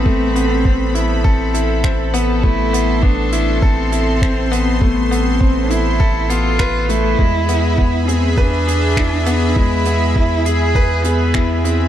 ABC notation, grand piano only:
X:1
M:4/4
L:1/8
Q:1/4=101
K:Am
V:1 name="Grand piano"
A, B, C E A E C B, | A, B, B, E A E C B, | A, B, C E A B, B A, | ^G, B, B, ^G B G E B, |
^G, B, E ^G B G E E |]